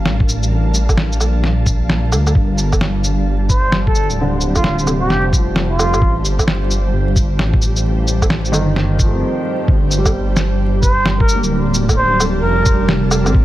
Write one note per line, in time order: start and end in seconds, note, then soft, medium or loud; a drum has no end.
0.00 2.37 G3 medium
0.00 9.68 G3 medium
0.00 3.35 D4 medium
0.00 2.36 A#4 medium
0.00 9.69 F5 medium
0.00 9.68 A5 medium
0.06 1.20 A1 medium
0.06 snare medium
0.20 kick loud
0.29 shaker medium
0.43 shaker soft
0.74 shaker medium
0.89 kick medium
0.89 low woodblock soft
0.89 shaker soft
0.97 snare loud
1.12 shaker soft
1.20 2.14 A#1 medium
1.20 low woodblock soft
1.20 shaker medium
1.44 snare medium
1.66 kick loud
1.66 shaker medium
1.90 snare medium
2.12 2.34 D2 medium
2.12 low woodblock soft
2.12 shaker medium
2.27 low woodblock soft
2.27 shaker soft
2.35 3.49 G1 medium
2.35 kick loud
2.45 13.45 G4 medium
2.58 shaker soft
2.73 kick medium
2.73 low woodblock soft
2.73 shaker soft
2.81 snare loud
3.04 10.75 C5 medium
3.04 shaker soft
3.50 4.08 G1 medium
3.50 3.74 C5 medium
3.50 kick loud
3.50 shaker soft
3.72 snare medium
3.87 4.11 A4 medium
3.87 kick loud
3.95 shaker medium
4.10 5.09 D1 medium
4.10 shaker soft
4.21 4.93 D3 medium
4.41 shaker soft
4.55 4.80 F4 medium
4.55 kick medium
4.55 low woodblock soft
4.55 shaker soft
4.64 snare medium
4.79 shaker soft
4.83 5.52 C3 medium
4.87 low woodblock soft
4.87 shaker soft
5.01 5.25 G4 medium
5.10 5.95 F1 medium
5.10 snare medium
5.33 kick loud
5.33 shaker soft
5.38 6.10 F3 medium
5.56 snare medium
5.70 6.16 F4 medium
5.79 low woodblock medium
5.79 shaker medium
5.94 6.24 A1 medium
5.94 low woodblock soft
5.94 shaker soft
6.02 kick loud
6.24 6.92 G1 medium
6.24 shaker medium
6.39 kick medium
6.39 low woodblock soft
6.39 shaker soft
6.48 snare loud
6.71 shaker soft
6.93 7.41 G1 loud
7.16 kick loud
7.16 shaker soft
7.39 8.52 A1 medium
7.39 snare medium
7.54 kick loud
7.62 shaker medium
7.76 shaker soft
8.08 shaker medium
8.22 kick medium
8.22 low woodblock soft
8.22 shaker soft
8.30 snare loud
8.45 shaker soft
8.52 9.22 G1 medium
8.52 9.18 D#3 medium
8.52 low woodblock soft
8.52 shaker medium
8.76 snare medium
8.99 9.21 F3 medium
8.99 kick loud
8.99 shaker medium
9.08 9.24 A3 medium
9.13 9.26 C4 medium
9.68 10.82 G1 medium
9.68 13.45 G3 medium
9.68 13.45 D4 medium
9.68 13.45 D5 medium
9.68 kick loud
9.91 shaker medium
9.98 10.69 G3 medium
10.06 kick medium
10.06 low woodblock soft
10.06 shaker soft
10.37 snare loud
10.37 shaker medium
10.77 13.45 A5 medium
10.82 11.41 G1 medium
10.82 11.07 C5 medium
10.82 kick loud
10.82 shaker medium
10.99 13.45 A#4 medium
11.06 snare loud
11.19 11.44 A#4 medium
11.19 kick loud
11.25 13.45 F5 medium
11.25 shaker medium
11.34 12.06 A#3 medium
11.43 12.42 D1 medium
11.43 shaker soft
11.74 shaker medium
11.89 kick medium
11.89 low woodblock soft
11.89 shaker soft
11.97 12.22 C5 medium
12.20 low woodblock soft
12.20 shaker medium
12.42 13.28 F1 medium
12.42 12.89 A#4 medium
12.66 kick loud
12.66 shaker medium
12.73 13.44 G3 medium
12.89 snare loud
13.11 low woodblock medium
13.11 shaker medium
13.24 13.45 A1 loud
13.24 13.45 C4 medium
13.24 low woodblock soft
13.24 shaker soft
13.35 kick loud